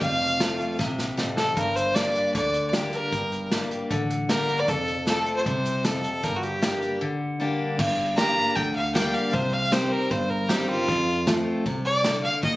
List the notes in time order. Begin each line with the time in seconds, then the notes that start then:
0.01 F1 F2 F5, kick, closed hi-hat
0.21 closed hi-hat
0.40 F3 A3 C4 F4, snare, closed hi-hat
0.60 closed hi-hat
0.79 A#1 C3, kick, snare
0.99 snare
1.17 A1 F2, snare
1.37 A4, snare
1.56 G1 G2 A#4, kick, closed hi-hat
1.76 C5, closed hi-hat
1.95 G3 A#3 D4 G4 D5, snare, closed hi-hat
2.15 closed hi-hat
2.34 D2 D3 D5, kick, closed hi-hat
2.54 closed hi-hat
2.73 G3 A#3 D4 G4, snare, closed hi-hat
2.93 A#4, closed hi-hat
3.12 G1 G2, kick, closed hi-hat
3.32 closed hi-hat
3.52 G3 A#3 D4 G4, snare, closed hi-hat
3.71 closed hi-hat
3.91 A1 D3, kick, closed hi-hat
4.10 closed hi-hat
4.29 G1 G3 A#3 D4 G4 A#4, snare, closed hi-hat
4.49 closed hi-hat
4.59 D5
4.68 F1 F2 A4, kick, closed hi-hat
4.88 closed hi-hat
5.07 F3 A3 C4 F4 A4, snare, closed hi-hat
5.26 closed hi-hat
5.36 C5
5.46 C2 C3 C5, kick, closed hi-hat
5.65 closed hi-hat
5.84 F2 A4, snare, closed hi-hat
6.04 closed hi-hat
6.23 G1 G2 A#4, kick, closed hi-hat
6.36 F#4
6.43 G4, closed hi-hat
6.62 G3 A#3 D4 G4, snare, closed hi-hat
6.82 closed hi-hat
7.01 D3
7.40 G3 A#3 D4 G4
7.79 G1 G2, kick, crash
8.17 G3 A#3 D4 G4 A#5, snare, open hi-hat
8.56 D2 D3 G5, kick, open hi-hat
8.76 F5
8.95 G3 A#3 D4 G4 G5, snare, open hi-hat
9.14 F5
9.33 C2 C3 C5, kick, open hi-hat
9.53 F5
9.72 D#3 G3 C4 G4 C5, snare, open hi-hat
9.92 A#4
10.11 G1 G2 C5, kick, open hi-hat
10.30 A#4
10.49 D#3 G3 C4 G4, snare, open hi-hat
10.69 F4
10.88 F2, kick, open hi-hat
11.27 F3 A3 C4 F4, snare, open hi-hat
11.66 C2 C3, kick, open hi-hat
11.85 D5
12.04 D3, snare, open hi-hat
12.23 F5
12.43 D#2 D#3 D#5, kick, open hi-hat